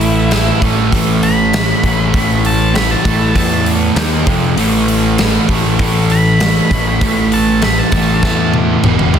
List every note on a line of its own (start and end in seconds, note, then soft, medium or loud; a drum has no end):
0.00 0.50 A1 medium
0.00 0.30 A2 medium
0.00 0.31 E3 loud
0.00 0.31 A3 loud
0.00 0.59 E4 loud
0.00 open hi-hat medium
0.31 0.60 A2 medium
0.31 0.61 E3 medium
0.31 0.61 A3 medium
0.31 snare loud
0.31 open hi-hat medium
0.61 0.89 A1 medium
0.61 0.90 A2 medium
0.61 0.91 E3 medium
0.61 0.92 A3 medium
0.61 kick medium
0.61 open hi-hat medium
0.91 1.72 A1 medium
0.91 1.51 A2 medium
0.91 1.52 E3 medium
0.91 1.53 A3 loud
0.91 kick medium
0.91 open hi-hat medium
1.23 2.42 B5 loud
1.23 open hi-hat medium
1.52 1.82 A2 medium
1.52 1.83 E3 medium
1.52 1.83 A3 medium
1.52 snare loud
1.52 open hi-hat medium
1.83 2.10 A1 loud
1.83 2.12 A2 medium
1.83 2.13 E3 medium
1.83 2.13 A3 medium
1.83 kick medium
1.83 open hi-hat medium
2.13 2.94 A1 medium
2.13 2.73 A2 medium
2.13 2.73 E3 medium
2.13 2.74 A3 loud
2.13 kick loud
2.13 open hi-hat medium
2.45 2.75 A5 medium
2.45 open hi-hat medium
2.74 3.03 A2 medium
2.74 3.04 E3 medium
2.74 3.05 A3 medium
2.74 2.91 B5 loud
2.74 snare loud
2.74 open hi-hat medium
2.91 3.35 A5 medium
3.04 3.32 A1 medium
3.04 3.34 A2 medium
3.04 3.35 E3 medium
3.04 3.36 A3 medium
3.04 kick medium
3.04 open hi-hat medium
3.36 3.89 E2 medium
3.36 3.95 A2 medium
3.36 3.95 E3 loud
3.36 3.96 A3 loud
3.36 3.66 A5 loud
3.36 kick medium
3.36 open hi-hat medium
3.66 open hi-hat medium
3.96 4.23 D#2 loud
3.96 4.26 D#3 medium
3.96 4.26 A#3 loud
3.96 4.26 D#4 loud
3.96 snare loud
3.96 open hi-hat medium
4.26 4.56 F2 loud
4.26 4.54 F2 medium
4.26 4.56 C3 loud
4.26 4.56 F3 loud
4.26 kick loud
4.26 open hi-hat medium
4.57 5.37 A1 loud
4.57 5.18 A2 medium
4.57 5.19 E3 loud
4.57 5.20 A3 loud
4.57 open hi-hat medium
4.88 open hi-hat medium
5.18 5.48 A2 medium
5.18 5.49 E3 medium
5.18 5.49 A3 medium
5.18 snare loud
5.18 open hi-hat medium
5.49 5.76 A1 loud
5.49 5.78 A2 medium
5.49 5.79 E3 medium
5.49 5.80 A3 medium
5.49 kick medium
5.49 open hi-hat medium
5.79 6.59 A1 medium
5.79 6.39 A2 loud
5.79 6.40 E3 loud
5.79 6.41 A3 loud
5.79 kick medium
5.79 open hi-hat medium
6.10 7.29 B5 loud
6.10 open hi-hat soft
6.40 6.69 A2 medium
6.40 6.70 E3 medium
6.40 6.71 A3 medium
6.40 snare loud
6.40 open hi-hat medium
6.71 6.98 A1 medium
6.71 7.01 A2 medium
6.71 7.01 E3 medium
6.71 7.02 A3 loud
6.71 kick medium
6.71 open hi-hat medium
7.01 7.81 A1 loud
7.01 7.61 A2 loud
7.01 7.62 E3 loud
7.01 7.63 A3 loud
7.01 kick loud
7.01 open hi-hat medium
7.32 7.62 A5 medium
7.32 open hi-hat medium
7.62 7.92 A2 medium
7.62 7.93 E3 medium
7.62 7.93 A3 medium
7.62 7.79 B5 medium
7.62 snare loud
7.62 open hi-hat medium
7.79 8.23 A5 medium
7.92 8.19 A1 medium
7.92 8.21 A2 medium
7.92 8.22 E3 loud
7.92 8.22 A3 loud
7.92 kick medium
7.92 open hi-hat medium
8.22 8.76 E2 loud
8.22 8.82 A2 loud
8.22 8.82 E3 loud
8.22 8.82 A3 loud
8.22 8.54 A5 loud
8.22 kick medium
8.22 snare medium
8.54 high tom medium
8.84 9.11 E1 loud
8.84 9.13 E2 medium
8.84 9.13 B2 loud
8.84 9.13 E3 loud
8.84 mid tom medium
8.99 mid tom medium
9.14 9.19 C2 medium
9.14 9.19 C3 medium
9.14 9.19 G3 loud
9.14 9.19 C4 loud
9.14 floor tom medium